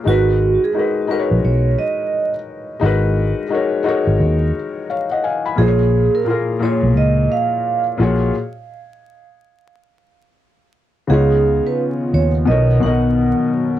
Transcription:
0.04 fingered electric bass G#1, felt piano G#3 D#4 F#4, vibraphone F#4
0.08 felt piano A#4 B4
0.64 vibraphone G#4
0.73 felt piano G#3 D#4 F#4
0.77 felt piano A#4 B4
1.07 felt piano G#3 D#4 F#4, vibraphone B4
1.11 felt piano A#4 B4
1.20 felt piano C#5
1.31 fingered electric bass A#1
1.44 fingered electric bass B1, vibraphone C#5
1.79 vibraphone D#5
2.80 fingered electric bass G#1, felt piano G#3 D#4 F#4
2.84 felt piano A#4 B4
3.49 felt piano G#3 D#4 F#4
3.53 felt piano A#4 C#5
3.83 felt piano G#3 D#4 F#4
3.87 felt piano A#4 C#5
4.07 fingered electric bass G#1
4.20 fingered electric bass D#2
4.90 felt piano C#5 F5
5.11 felt piano D#5 F#5
5.24 felt piano F5 G#5
5.45 felt piano G#5 B5
5.56 fingered electric bass A#1, felt piano A#2 A#3 F4, vibraphone G#4
5.60 felt piano G#4 C5
5.68 felt piano C#5
6.15 vibraphone A#4
6.25 felt piano A#2 A#3 F4
6.29 felt piano G#4 A#4
6.59 felt piano A#2 A#3 F4, vibraphone C#5
6.63 felt piano G#4 C#5
6.83 fingered electric bass B1
6.96 fingered electric bass C#2, vibraphone D#5
7.32 vibraphone F5
7.97 fingered electric bass A#1, felt piano A#2 A#3 F4 F#4
8.02 felt piano G#4 C#5
11.07 fingered electric bass C#2, felt piano C#3 B3 D#4, analog synth pad D#3 B3 C#4 F4, vibraphone G#4
11.12 felt piano F4 C#5
11.67 vibraphone B4
12.14 fingered electric bass D#2, vibraphone C#5
12.46 fingered electric bass B1, felt piano B2 B3 D#4, analog synth pad F#3 A#4, vibraphone D#5
12.50 felt piano A#4 C#5
12.80 fingered electric bass B1, felt piano B2 B3 D#4, vibraphone F#5
12.84 felt piano A#4 D#5

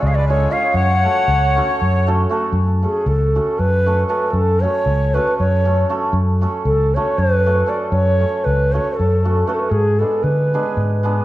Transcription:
Already playing: hammered dulcimer G#3
0.02 fingered electric bass C#2, accordion G#4, ney D5
0.07 accordion C#5, ney F5
0.15 accordion B4, ney D5
0.28 hammered dulcimer G#3 C#4 F4 G#4, accordion A4, ney C#5
0.51 hammered dulcimer G#3 C#4 F4 G#4, accordion C#5, ney F5
0.74 fingered electric bass F#2, accordion C#5, ney F#5
1.03 hammered dulcimer A3 C#4 F#4 A4
1.28 fingered electric bass C#2
1.55 hammered dulcimer A3 C#4 F#4 A4
1.82 fingered electric bass F#2
2.07 hammered dulcimer A3 C#4 F#4 A4
2.29 hammered dulcimer A3 C#4 F#4 A4
2.52 fingered electric bass F#2
2.82 hammered dulcimer A3 C#4 F#4 A4, ney G#4
3.06 fingered electric bass C#2, ney A4
3.35 hammered dulcimer A3 C#4 F#4 A4
3.59 fingered electric bass F#2, ney B4
3.86 hammered dulcimer A3 C#4 F#4 A4
4.08 hammered dulcimer A3 C#4 F#4 A4, ney B4
4.31 fingered electric bass F#2, ney A4
4.61 hammered dulcimer A3 C#4 F#4 A4, ney C#5
4.86 fingered electric bass C#2
5.14 hammered dulcimer A3 C#4 F#4 A4, ney B4
5.38 fingered electric bass F#2, ney C#5
5.65 hammered dulcimer A3 C#4 F#4 A4
5.89 hammered dulcimer A3 C#4 F#4 A4
6.13 fingered electric bass F#2
6.41 hammered dulcimer A3 C#4 F#4 A4
6.65 fingered electric bass C#2, ney A4
6.94 hammered dulcimer A3 C#4 F#4 A4, ney C#5
7.18 fingered electric bass F#2, ney B4
7.46 hammered dulcimer A3 C#4 F#4 A4
7.66 hammered dulcimer A3 C#4 F#4 A4, ney D5
7.90 fingered electric bass F#2, ney C#5
8.19 hammered dulcimer A3 C#4 F#4 A4
8.44 fingered electric bass C#2, ney B4
8.73 hammered dulcimer A3 C#4 F#4 A4, ney C#5
8.96 fingered electric bass F#2, ney A4
9.24 hammered dulcimer A3 C#4 F#4 A4
9.47 hammered dulcimer A3 C#4 F#4 A4, ney B4
9.54 ney A4
9.59 ney B4
9.70 fingered electric bass G#2, ney G#4
9.99 hammered dulcimer G#3 B3 D4 G#4, ney A4
10.23 fingered electric bass D3, ney B4
10.54 hammered dulcimer G#3 B3 D4 G#4
10.77 fingered electric bass G#2
11.03 hammered dulcimer G#3 B3 D4 G#4

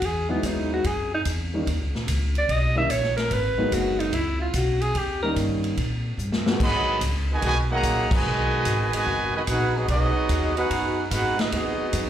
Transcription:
0.02 upright bass E2, alto saxophone G#4, kick, ride
0.29 grand piano F#3 G#3 B3 D#4 E4, alto saxophone B3
0.43 upright bass D#2, alto saxophone D#4, kick, hi-hat pedal, ride
0.74 alto saxophone F#4
0.84 upright bass F#2, alto saxophone G#4, kick, ride
1.15 alto saxophone D#4
1.25 upright bass E2, kick, hi-hat pedal, ride
1.54 grand piano D#3 G3 A#3 C#4 D#4
1.67 upright bass D#2, kick, ride
1.80 upright bass C#2
1.93 upright bass A#1, snare
2.07 upright bass C#2, kick, hi-hat pedal, ride
2.35 alto saxophone D5, ride
2.49 upright bass B1, alto saxophone D#5, kick, ride
2.75 grand piano D#3 G3 A#3 C#4 D#4, alto saxophone E5
2.90 upright bass A#1, alto saxophone C#5, kick, hi-hat pedal, ride
3.03 snare
3.17 alto saxophone A#4, snare, ride
3.31 upright bass G#1, alto saxophone B4, kick, ride
3.58 grand piano F#3 G#3 A#3 B3 D#4, muted upright bass stroke
3.71 upright bass F#1, alto saxophone F#4, kick, hi-hat pedal, ride
4.00 alto saxophone D#4, ride
4.13 upright bass C#2, alto saxophone E4, kick, ride
4.41 alto saxophone F4
4.53 upright bass B1, alto saxophone F#4, kick, hi-hat pedal, ride
4.81 alto saxophone G#4, ride
4.95 upright bass D#2, alto saxophone G4, kick, ride
5.22 grand piano D#3 G3 A#3 C#4 D#4, alto saxophone A#4
5.36 upright bass G2, kick, hi-hat pedal, ride
5.64 ride
5.77 upright bass A#2, kick, ride
6.17 upright bass G2, hi-hat pedal
6.32 snare
6.46 grand piano F#3 G#3 A#3 B3 F#4, snare
6.60 upright bass G#2, trombone section D#3 F#3 B3, trumpet section G#4 D#5 F#5 B5, kick, crash
7.01 upright bass C#2, kick, hi-hat pedal, ride
7.30 trombone section B2 D#3 G#3, trumpet section F#4 B4 D#5 G#5
7.41 upright bass B1, trombone section B2 D#3 G#3, kick, ride
7.46 trumpet section F#4 B4 D#5 G#5
7.70 trombone section D#3 F#3 A#3, trumpet section G#4 D#5 F#5 A#5
7.83 upright bass A#1, kick, hi-hat pedal, ride
8.11 trombone section B2 D#3 G#3, trumpet section F#4 B4 D#5 G#5, kick, crash
8.24 upright bass B1
8.65 upright bass G#1, kick, hi-hat pedal, ride
8.93 trombone section B2 D#3 G#3, trumpet section B4 D#5 G#5, muted upright bass stroke, ride
8.97 trumpet section F#4
9.06 upright bass F#1, kick
9.34 trombone section B2 D#3 G#3, trumpet section F#4 B4 D#5 G#5, muted upright bass stroke
9.47 upright bass A#1, trombone section B3 D#4 F#4, trumpet section D#4 G#4 B4 F#5, kick, hi-hat pedal, ride
9.75 trombone section F#3 B3 D#4, trumpet section B3 F#4 G#4 D#5
9.87 upright bass B1, trombone section F#3 B3 D#4, trumpet section B3 F#4 G#4 D#5, kick, ride
10.16 muted upright bass stroke
10.29 upright bass D#2, kick, hi-hat pedal, ride
10.56 trombone section B3 D#4 F#4, trumpet section D#4 G#4 B4 F#5, ride
10.70 upright bass F#2, kick, ride
11.09 upright bass G#2, trombone section B3 D#4 F#4, trumpet section D#4 G#4 B4 F5 F#5, kick, hi-hat pedal, ride
11.37 trombone section F#3 B3 D#4, trumpet section B3 F#4 G#4 D#5, snare, ride
11.51 upright bass D#2, trombone section F#3 B3 D#4, trumpet section B3 F#4 G#4 D#5, kick, ride
11.80 muted upright bass stroke
11.93 upright bass F#2, kick, hi-hat pedal, ride

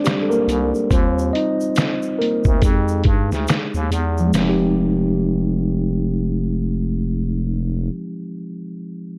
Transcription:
Already playing: tine electric piano G#3 C4 D4 G#4 C5 D5
0.04 tine electric piano G3 G4, finger snap, snare, closed hi-hat, shaker
0.22 tine electric piano A4
0.30 tine electric piano A#3 A#4, shaker
0.48 fm bass C2, closed hi-hat, shaker
0.75 shaker
0.90 fm bass D#2, tine electric piano G3 C4 F4 C5, kick, closed hi-hat, shaker
1.19 shaker
1.33 tine electric piano D#4 D#5, closed hi-hat
1.61 shaker
1.75 finger snap, snare, closed hi-hat, shaker
2.02 shaker
2.19 tine electric piano A#3 A#4, closed hi-hat
2.44 fm bass D2, kick, shaker
2.62 fm bass F2, tine electric piano G#3 D#4 G4 G#4, kick, closed hi-hat, shaker
2.88 shaker
3.04 fm bass G2, kick, closed hi-hat
3.32 fm bass D2, snare, shaker
3.48 finger snap, snare, closed hi-hat, shaker
3.74 fm bass D#2, shaker
3.91 fm bass E2, closed hi-hat, shaker
4.18 tine electric piano F3, shaker
4.27 tine electric piano G#3
4.33 fm bass F1, tine electric piano C4, snare, open hi-hat, shaker
4.42 tine electric piano D#4
4.49 tine electric piano G4

